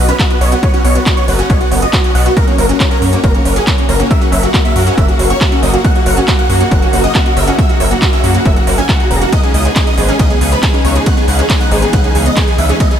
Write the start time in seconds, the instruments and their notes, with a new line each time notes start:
Already playing: analog synth bass B1
0.08 synth pluck C#4, supersaw synth B4, closed hi-hat
0.19 synth pluck B3, supersaw synth F#4, kick, clap, closed hi-hat
0.30 synth pluck B3, supersaw synth F#4, closed hi-hat
0.41 analog synth bass B1, synth pluck B3, supersaw synth C#5, open hi-hat
0.52 synth pluck B3, supersaw synth F#4, closed hi-hat
0.63 synth pluck B4, supersaw synth C#5, kick, closed hi-hat
0.74 synth pluck C#4, supersaw synth F#4, closed hi-hat
0.85 analog synth bass B1, synth pluck B3, supersaw synth C#5, open hi-hat
0.95 synth pluck B3, supersaw synth F#4, closed hi-hat
1.06 synth pluck B3, supersaw synth F#4, kick, clap, closed hi-hat
1.17 synth pluck B3, supersaw synth C#5, closed hi-hat
1.28 analog synth bass F#1, supersaw synth F#4, synth pluck B4, open hi-hat
1.39 synth pluck C#4, supersaw synth F#4, closed hi-hat
1.50 analog synth bass B1, synth pluck B3, supersaw synth C#5, kick, closed hi-hat
1.60 synth pluck B3, supersaw synth F#4, closed hi-hat
1.71 analog synth bass F#1, synth pluck B3, supersaw synth F#4, open hi-hat
1.82 synth pluck B3, supersaw synth D#5, closed hi-hat
1.93 supersaw synth F#4, synth pluck B4, kick, clap, closed hi-hat
2.04 synth pluck C#4, supersaw synth F#4, closed hi-hat
2.15 analog synth bass B1, synth pluck B3, supersaw synth F#5, open hi-hat
2.26 synth pluck B3, supersaw synth F#4, closed hi-hat
2.36 string section C#3 F#3 A#3 F#4, synth pluck A#3, supersaw synth A#4, kick, closed hi-hat
2.47 synth pluck A#3, supersaw synth C#4, closed hi-hat
2.58 analog synth bass F#1, synth pluck A#3, supersaw synth A#4, open hi-hat
2.69 synth pluck A#3, supersaw synth C#4, closed hi-hat
2.80 supersaw synth C#4, synth pluck A#4, kick, clap, closed hi-hat
2.91 synth pluck C#4, supersaw synth A#4, closed hi-hat
3.02 analog synth bass F#2, synth pluck A#3, supersaw synth C#4, open hi-hat
3.13 synth pluck A#3, supersaw synth C#4, closed hi-hat
3.23 analog synth bass F#1, synth pluck A#3, supersaw synth A#4, kick, closed hi-hat
3.35 synth pluck A#3, supersaw synth C#4, closed hi-hat
3.45 analog synth bass F#1, supersaw synth C#4, synth pluck A#4, open hi-hat
3.56 synth pluck C#4, supersaw synth G#4, closed hi-hat
3.67 synth pluck A#3, supersaw synth C#4, kick, clap, closed hi-hat
3.78 synth pluck A#3, supersaw synth C#4, closed hi-hat
3.89 analog synth bass F#1, synth pluck A#3, supersaw synth A#4, open hi-hat
4.00 synth pluck A#3, supersaw synth C#4, closed hi-hat
4.10 synth pluck A#4, supersaw synth E5, kick, closed hi-hat
4.21 synth pluck C#4, supersaw synth F#4, closed hi-hat
4.32 analog synth bass F#1, synth pluck A#3, supersaw synth E5, open hi-hat
4.43 synth pluck A#3, supersaw synth F#4, closed hi-hat
4.54 synth pluck A#3, supersaw synth F#4, kick, clap, closed hi-hat
4.65 synth pluck A#3, supersaw synth E5, closed hi-hat
4.76 analog synth bass F#2, supersaw synth F#4, synth pluck A#4, open hi-hat
4.87 synth pluck C#4, supersaw synth F#4, closed hi-hat
4.97 analog synth bass F#1, synth pluck A#3, supersaw synth E5, kick, closed hi-hat
5.08 synth pluck A#3, supersaw synth F#4, closed hi-hat
5.19 analog synth bass F#1, synth pluck A#3, supersaw synth F#4, open hi-hat
5.30 synth pluck A#3, supersaw synth C#5, closed hi-hat
5.41 supersaw synth F#4, synth pluck A#4, kick, clap, closed hi-hat
5.52 synth pluck C#4, supersaw synth F#4, closed hi-hat
5.63 analog synth bass F#1, synth pluck A#3, supersaw synth D#5, open hi-hat
5.74 synth pluck A#3, supersaw synth F#4, closed hi-hat
5.84 synth pluck A#3, supersaw synth F#5, kick, closed hi-hat
5.95 synth pluck A#3, supersaw synth F#4, closed hi-hat
6.06 analog synth bass F#1, synth pluck A#4, supersaw synth F#5, open hi-hat
6.17 synth pluck C#4, supersaw synth F#4, closed hi-hat
6.28 synth pluck A#3, supersaw synth F#4, kick, clap, closed hi-hat
6.39 synth pluck A#3, supersaw synth F#5, closed hi-hat
6.50 analog synth bass F#2, synth pluck A#3, supersaw synth F#4, open hi-hat
6.60 synth pluck A#3, supersaw synth F#4, closed hi-hat
6.71 analog synth bass F#1, synth pluck A#4, supersaw synth F#5, kick, closed hi-hat
6.82 synth pluck C#4, supersaw synth F#4, closed hi-hat
6.93 analog synth bass F#1, synth pluck A#3, supersaw synth F#4, open hi-hat
7.04 synth pluck A#3, supersaw synth D#5, closed hi-hat
7.15 synth pluck A#3, supersaw synth F#4, kick, clap, closed hi-hat
7.26 synth pluck A#3, supersaw synth F#4, closed hi-hat
7.37 analog synth bass F#1, synth pluck A#4, supersaw synth E5, open hi-hat
7.47 synth pluck C#4, supersaw synth F#4, closed hi-hat
7.58 synth pluck A#3, supersaw synth E5, kick, closed hi-hat
7.69 synth pluck A#3, supersaw synth F#4, closed hi-hat
7.80 analog synth bass F#1, synth pluck A#3, supersaw synth E5, open hi-hat
7.91 synth pluck A#3, supersaw synth F#4, closed hi-hat
8.02 supersaw synth F#4, synth pluck A#4, kick, clap, closed hi-hat
8.13 synth pluck C#4, supersaw synth E5, closed hi-hat
8.24 analog synth bass F#2, synth pluck A#3, supersaw synth F#4, open hi-hat
8.34 synth pluck A#3, supersaw synth F#4, closed hi-hat
8.45 analog synth bass F#1, synth pluck A#3, supersaw synth E5, kick, closed hi-hat
8.56 synth pluck A#3, supersaw synth F#4, closed hi-hat
8.67 analog synth bass F#1, supersaw synth F#4, synth pluck A#4, open hi-hat
8.78 synth pluck C#4, supersaw synth G#5, closed hi-hat
8.89 synth pluck A#3, supersaw synth F#4, kick, clap, closed hi-hat
9.00 synth pluck A#3, supersaw synth F#4, closed hi-hat
9.11 analog synth bass E1, synth pluck A#3, supersaw synth A#5, open hi-hat
9.22 synth pluck A#3, supersaw synth F#4, closed hi-hat
9.32 string section E3 G#3 D#4, synth pluck B4, supersaw synth D#5, kick, closed hi-hat, ride
9.43 synth pluck C#4, supersaw synth G#4, closed hi-hat
9.54 analog synth bass C#2, synth pluck B3, supersaw synth D#5, open hi-hat
9.65 synth pluck B3, supersaw synth G#4, closed hi-hat
9.76 synth pluck B3, supersaw synth G#4, kick, clap, closed hi-hat, ride
9.87 synth pluck B3, supersaw synth D#5, closed hi-hat
9.98 analog synth bass G#1, supersaw synth G#4, synth pluck B4, open hi-hat
10.09 synth pluck C#4, supersaw synth G#4, closed hi-hat
10.19 analog synth bass C#2, synth pluck B3, supersaw synth D#5, kick, closed hi-hat, ride
10.30 synth pluck B3, supersaw synth G#4, closed hi-hat
10.41 analog synth bass C#2, synth pluck B3, supersaw synth G#4, open hi-hat
10.52 synth pluck B3, supersaw synth B4, closed hi-hat
10.63 supersaw synth G#4, synth pluck B4, kick, clap, closed hi-hat, ride
10.74 synth pluck C#4, supersaw synth G#4, closed hi-hat
10.85 analog synth bass C#2, synth pluck B3, supersaw synth C#5, open hi-hat
10.95 synth pluck B3, supersaw synth G#4, closed hi-hat
11.06 synth pluck B3, supersaw synth F#5, kick, closed hi-hat, ride
11.17 synth pluck B3, supersaw synth G#4, closed hi-hat
11.28 analog synth bass C#2, synth pluck B4, supersaw synth F#5, open hi-hat
11.39 synth pluck C#4, supersaw synth G#4, closed hi-hat
11.50 synth pluck B3, supersaw synth G#4, kick, clap, closed hi-hat, ride
11.61 synth pluck B3, supersaw synth F#5, closed hi-hat
11.71 analog synth bass G#1, synth pluck B3, supersaw synth G#4, open hi-hat
11.82 synth pluck B3, supersaw synth G#4, closed hi-hat
11.93 analog synth bass C#2, synth pluck B4, supersaw synth F#5, kick, closed hi-hat, ride
12.04 synth pluck C#4, supersaw synth G#4, closed hi-hat
12.15 analog synth bass C#2, synth pluck B3, supersaw synth G#4, open hi-hat
12.26 synth pluck B3, supersaw synth D#5, closed hi-hat
12.37 synth pluck B3, supersaw synth G#4, kick, clap, closed hi-hat, ride
12.47 synth pluck B3, supersaw synth G#4, closed hi-hat
12.58 analog synth bass C#2, synth pluck B4, supersaw synth E5, open hi-hat
12.69 synth pluck C#4, supersaw synth G#4, closed hi-hat
12.80 synth pluck B3, supersaw synth D#5, kick, closed hi-hat, ride
12.91 synth pluck B3, supersaw synth G#4, closed hi-hat